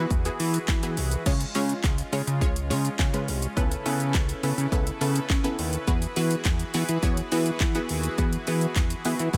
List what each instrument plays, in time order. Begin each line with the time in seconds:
Already playing: supersaw synth E3 E4 F#4 G#4 B4, synth pluck B3 E4 F#4 B4
0.11 analog synth bass E2, kick, shaker
0.25 synth pluck B3 E4 F#4 G#4, closed hi-hat, shaker
0.40 analog synth bass E3, open hi-hat, shaker
0.54 closed hi-hat, shaker
0.68 analog synth bass E3, kick, snare, clap, shaker
0.83 synth pluck B3 E4 F#4 G#4, closed hi-hat, shaker
0.97 analog synth bass C2, open hi-hat, shaker
1.11 closed hi-hat, shaker
1.26 analog synth bass C#2, synth pluck G#3 C#4 F4 G#4 C#5, supersaw synth F4, kick, crash, shaker
1.41 closed hi-hat, shaker
1.55 analog synth bass C#3, synth pluck G#3 C#4 F4 G#4 C#5, open hi-hat, shaker
1.69 closed hi-hat, shaker
1.84 analog synth bass C#2, kick, snare, clap, shaker
1.98 closed hi-hat, shaker
2.12 analog synth bass C#3, synth pluck G#3 C#4 F4 G#4 C#5, open hi-hat, shaker
2.27 analog synth bass C#3, closed hi-hat, shaker
2.41 analog synth bass C#2, synth pluck G#3 C#4 F4 G#4 C#5, kick, shaker
2.56 closed hi-hat, shaker
2.70 analog synth bass C#3, synth pluck G#3 C#4 F4 G#4 C#5, open hi-hat, shaker
2.85 closed hi-hat, shaker
2.99 analog synth bass C#3, kick, snare, clap, shaker
3.13 synth pluck G#3 C#4 F4 G#4 B4, closed hi-hat, shaker
3.28 analog synth bass C2, open hi-hat, shaker
3.42 closed hi-hat, shaker
3.57 analog synth bass C#2, supersaw synth C#3 E4 A4 B4, synth pluck B3 C#4 E4 A4 B4, kick, shaker
3.72 closed hi-hat, shaker
3.86 analog synth bass C#3, synth pluck B3 C#4 E4 A4 B4, open hi-hat, shaker
4.00 closed hi-hat, shaker
4.14 analog synth bass C#2, kick, snare, clap, shaker
4.29 closed hi-hat, shaker
4.43 analog synth bass C#3, synth pluck B3 C#4 E4 A4 B4, open hi-hat, shaker
4.58 analog synth bass C#3, closed hi-hat, shaker
4.72 analog synth bass C#2, synth pluck B3 C#4 E4 A4 B4, kick, shaker
4.87 closed hi-hat, shaker
5.01 analog synth bass C#3, synth pluck B3 C#4 E4 A4 B4, open hi-hat, shaker
5.16 closed hi-hat, shaker
5.30 analog synth bass C#3, kick, snare, clap, shaker
5.44 synth pluck B3 C#4 E4 A4 B4, closed hi-hat, shaker
5.59 analog synth bass D#2, open hi-hat, shaker
5.73 closed hi-hat, shaker
5.87 analog synth bass E2, supersaw synth E3 E4 G#4, synth pluck B3 E4 F#4 G#4 B4, kick, shaker
6.02 closed hi-hat, shaker
6.16 analog synth bass E3, synth pluck B3 E4 F#4 G#4 B4, open hi-hat, shaker
6.31 closed hi-hat, shaker
6.45 analog synth bass E2, kick, snare, clap, shaker
6.59 closed hi-hat, shaker
6.74 analog synth bass E3, synth pluck B3 E4 F#4 G#4 B4, open hi-hat, shaker
6.89 analog synth bass E3, closed hi-hat, shaker
7.03 analog synth bass E2, synth pluck B3 E4 F#4 G#4 C#5, kick, shaker
7.17 closed hi-hat, shaker
7.32 analog synth bass E3, synth pluck B3 E4 F#4 G#4 B4, open hi-hat, shaker
7.46 closed hi-hat, shaker
7.60 analog synth bass E3, kick, snare, clap, shaker
7.75 synth pluck B3 E4 F#4 G#4 B4, closed hi-hat, shaker
7.89 analog synth bass D#2, open hi-hat, shaker
8.04 closed hi-hat, shaker
8.18 analog synth bass E2, synth pluck B3 E4 F#4 G#4 B4, kick, shaker
8.33 closed hi-hat, shaker
8.47 analog synth bass E3, synth pluck B3 E4 F#4 G#4 B4, open hi-hat, shaker
8.61 closed hi-hat, shaker
8.76 analog synth bass E2, kick, snare, clap, shaker
8.90 closed hi-hat, shaker
9.05 analog synth bass E3, synth pluck B3 E4 F#4 G#4 B4, open hi-hat, shaker
9.19 analog synth bass E3, closed hi-hat, shaker
9.34 analog synth bass E2, synth pluck B3 E4 F#4, kick, shaker